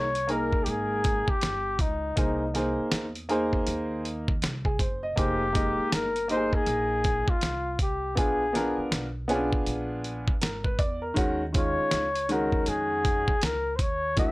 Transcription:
0.00 0.64 C2 medium
0.00 0.33 C#5 medium
0.15 closed hi-hat medium
0.27 1.29 A#3 medium
0.27 1.29 D#4 medium
0.27 1.30 G#4 medium
0.27 1.30 A#4 medium
0.27 0.65 A#4 medium
0.27 closed hi-hat medium
0.53 kick medium
0.64 1.25 G#1 medium
0.64 0.71 G4 medium
0.64 closed hi-hat medium
0.69 1.31 G#4 medium
1.04 kick loud
1.04 closed hi-hat medium
1.28 1.82 G4 medium
1.28 muted upright bass stroke soft
1.28 kick loud
1.41 1.78 G1 medium
1.41 snare loud
1.41 closed hi-hat medium
1.79 2.15 C#2 medium
1.79 2.55 D#4 medium
1.79 kick medium
1.79 closed hi-hat medium
2.16 2.75 C2 medium
2.16 2.42 A#3 medium
2.16 2.42 D#4 medium
2.16 2.43 G#4 medium
2.16 2.43 C5 medium
2.16 kick loud
2.16 closed hi-hat medium
2.54 3.05 A#3 medium
2.54 3.05 D#4 medium
2.54 3.05 G#4 medium
2.54 3.06 C5 medium
2.54 snare soft
2.54 closed hi-hat medium
2.78 muted upright bass stroke soft
2.92 3.64 E2 medium
2.92 snare loud
2.92 closed hi-hat medium
3.15 closed hi-hat medium
3.29 4.29 A#3 medium
3.29 4.30 D#4 medium
3.29 4.05 G#4 medium
3.29 4.06 C5 medium
3.29 closed hi-hat medium
3.53 kick medium
3.67 4.39 D#2 medium
3.67 closed hi-hat medium
4.05 closed hi-hat medium
4.28 kick medium
4.42 4.78 C2 medium
4.42 snare loud
4.42 closed hi-hat medium
4.65 4.79 G#4 medium
4.65 kick medium
4.79 5.15 F#1 medium
4.79 5.02 C5 medium
4.79 kick loud
4.79 closed hi-hat medium
5.03 5.39 D#5 medium
5.16 5.75 F1 medium
5.16 5.42 A#3 medium
5.16 5.42 D#4 medium
5.16 5.95 G4 loud
5.16 5.43 G#4 medium
5.16 5.43 C5 medium
5.16 kick loud
5.16 closed hi-hat medium
5.53 6.05 G#3 medium
5.53 6.04 A#3 medium
5.53 6.04 D#4 medium
5.53 6.05 D#5 medium
5.53 kick loud
5.53 closed hi-hat medium
5.78 muted upright bass stroke soft
5.92 6.64 G1 medium
5.92 6.30 A#4 medium
5.92 snare loud
5.92 closed hi-hat medium
6.16 closed hi-hat medium
6.28 7.29 A#3 medium
6.28 7.30 D#4 medium
6.28 6.38 G4 soft
6.28 6.56 C5 loud
6.28 7.30 D#5 medium
6.28 closed hi-hat medium
6.37 7.33 G#4 medium
6.53 7.31 G#4 loud
6.53 kick medium
6.66 7.25 A#1 loud
6.66 closed hi-hat medium
7.04 kick medium
7.04 closed hi-hat medium
7.28 7.81 F4 medium
7.28 kick loud
7.41 8.17 C2 medium
7.41 snare loud
7.41 closed hi-hat medium
7.79 8.16 G4 medium
7.79 kick medium
7.79 closed hi-hat medium
8.15 8.75 A#1 medium
8.15 8.41 B3 medium
8.15 8.42 D4 medium
8.15 8.42 F4 medium
8.15 8.43 G#4 medium
8.15 8.89 G#4 medium
8.15 kick loud
8.15 closed hi-hat medium
8.53 9.04 B3 medium
8.53 9.04 D4 medium
8.53 9.05 F4 medium
8.53 9.05 A#4 medium
8.53 snare soft
8.53 closed hi-hat medium
8.78 muted upright bass stroke soft
8.91 9.63 B1 medium
8.91 snare loud
8.91 closed hi-hat medium
9.28 10.29 B3 medium
9.28 9.37 C#4 medium
9.28 10.30 F4 medium
9.28 10.30 G#4 medium
9.28 closed hi-hat medium
9.35 10.33 D4 medium
9.53 kick medium
9.66 10.25 A#1 medium
9.66 closed hi-hat medium
10.04 closed hi-hat medium
10.28 muted upright bass stroke soft
10.28 kick loud
10.41 10.78 G#1 medium
10.41 10.64 A#4 medium
10.41 snare loud
10.41 closed hi-hat medium
10.64 10.78 B4 medium
10.64 kick medium
10.79 11.15 E2 medium
10.79 11.01 D5 medium
10.79 kick loud
10.79 closed hi-hat medium
11.02 11.38 A#4 medium
11.14 11.75 D#2 medium
11.14 11.41 D#3 medium
11.14 11.41 G#3 medium
11.14 11.42 C#4 medium
11.14 11.42 F#4 medium
11.14 kick loud
11.14 closed hi-hat medium
11.53 12.04 D#3 medium
11.53 12.04 G#3 medium
11.53 12.05 C#4 medium
11.53 12.05 F4 medium
11.53 kick loud
11.53 closed hi-hat medium
11.57 12.33 C#5 medium
11.78 muted upright bass stroke soft
11.91 12.64 C#2 medium
11.91 snare medium
11.91 closed hi-hat medium
12.16 closed hi-hat medium
12.29 13.29 D#3 medium
12.29 13.30 G#3 medium
12.29 13.30 C#4 medium
12.29 13.31 F#4 medium
12.29 12.70 A#4 medium
12.29 closed hi-hat medium
12.52 kick medium
12.66 13.25 F2 medium
12.66 13.46 G#4 medium
12.66 closed hi-hat medium
13.05 kick medium
13.05 closed hi-hat medium
13.28 muted upright bass stroke soft
13.28 kick medium
13.42 13.79 C#2 medium
13.42 13.77 A#4 loud
13.42 snare loud
13.42 closed hi-hat medium
13.76 14.15 D#2 loud
13.76 13.83 C5 medium
13.76 kick medium
13.76 closed hi-hat medium
13.81 14.18 C#5 medium
14.16 14.32 D2 loud
14.16 14.32 E3 medium
14.16 14.32 A3 medium
14.16 14.32 D4 medium
14.16 14.32 F#4 medium
14.16 14.32 E5 loud
14.16 kick loud
14.16 closed hi-hat medium

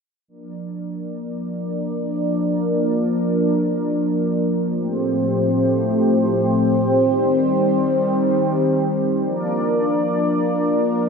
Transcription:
0.28 6.97 F3 medium
0.28 4.73 A#3 medium
0.28 4.73 D4 medium
0.28 4.73 A#4 medium
0.28 4.73 D5 medium
4.77 6.99 A2 medium
4.77 6.99 A3 medium
4.77 9.22 C4 medium
4.77 9.22 G4 medium
4.77 9.22 C5 medium
7.01 9.23 D#3 medium
7.01 9.23 G3 medium
9.26 11.09 F3 medium
9.26 11.09 A#3 medium
9.26 11.09 D4 medium
9.26 11.09 A#4 medium
9.26 11.09 D5 medium

